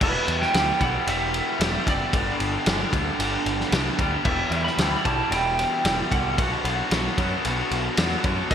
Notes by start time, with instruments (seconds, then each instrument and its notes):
0.01 picked electric bass E1, overdriven electric guitar E2 B2 E3 G3 B3 G4, lead electric guitar B4, kick, crash
0.28 picked electric bass E2, ride
0.42 lead electric guitar G5, snare
0.53 picked electric bass D2, overdriven electric guitar E2 B2 E3 G3 B3 G4, snare, ride
0.80 picked electric bass B1, overdriven electric guitar E2 B2 E3 G3 B3 G4, lead electric guitar F#5, kick, ride
1.07 picked electric bass E1, overdriven electric guitar E2 B2 E3 G3 B3 G4, lead electric guitar E5, ride
1.34 ride
1.60 picked electric bass E1, overdriven electric guitar E2 B2 E3 G3 B3 G4, snare, ride
1.86 picked electric bass F#1, overdriven electric guitar E2 B2 E3 G3 B3 G4, lead electric guitar D5, kick, ride
2.13 picked electric bass G1, overdriven electric guitar G2 D3 G3 B3 D4 G4, kick, ride
2.40 picked electric bass G1, ride
2.66 picked electric bass G1, overdriven electric guitar G2 D3 G3 B3 D4 G4, snare, ride
2.93 picked electric bass D2, overdriven electric guitar G2 D3 G3 B3 D4 G4, kick, ride
3.19 picked electric bass G1, overdriven electric guitar G2 D3 G3 B3 D4 G4, ride
3.46 picked electric bass G1, ride
3.60 snare
3.72 picked electric bass C2, overdriven electric guitar G2 D3 G3 B3 D4 G4, snare, ride
3.98 picked electric bass D2, overdriven electric guitar G2 D3 G3 B3 D4 G4, kick, ride
4.25 picked electric bass E1, overdriven electric guitar E2 B2 E3 G3 E4 G4, lead electric guitar E5, kick, crash
4.51 picked electric bass E2, ride
4.64 lead electric guitar B5, snare
4.78 picked electric bass D2, overdriven electric guitar E2 B2 E3 G3 E4 G4, snare, ride
5.04 picked electric bass B1, overdriven electric guitar E2 B2 E3 G3 E4 G4, lead electric guitar A5, kick, ride
5.30 picked electric bass E1, overdriven electric guitar E2 B2 E3 G3 E4 G4, lead electric guitar G5, ride
5.59 ride
5.84 picked electric bass E1, overdriven electric guitar E2 B2 E3 G3 E4 G4, snare, ride
6.11 picked electric bass C2, overdriven electric guitar E2 B2 E3 G3 E4 G4, lead electric guitar F#5, kick, ride
6.38 picked electric bass B1, overdriven electric guitar B2 F#3 B3 D4 F#4, kick, ride
6.64 picked electric bass B1, ride
6.91 picked electric bass B1, overdriven electric guitar B2 F#3 B3 D4 F#4, snare, ride
7.18 picked electric bass F#2, overdriven electric guitar B2 F#3 B3 D4 F#4, kick, ride
7.44 picked electric bass B1, overdriven electric guitar B2 F#3 B3 D4 F#4, ride
7.71 picked electric bass B1, ride
7.97 picked electric bass E2, overdriven electric guitar B2 F#3 B3 D4 F#4, snare, ride
8.24 picked electric bass F#2, overdriven electric guitar B2 F#3 B3 D4 F#4, kick, ride
8.51 picked electric bass E1, overdriven electric guitar E2, lead electric guitar E5, kick, crash